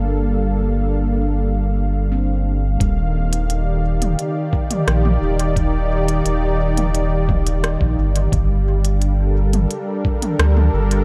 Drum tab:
HH |----------------|x--xx--xx--xx--x|x--xx--xx--xx--x|x--xx--xx--xx--x|
SD |----------------|------------r---|------------r---|------------r---|
T2 |----------------|-------o---o-o--|-------o--o-----|-------o---o-o--|
BD |----------------|o---------o-----|o---------o--o--|o---------o-----|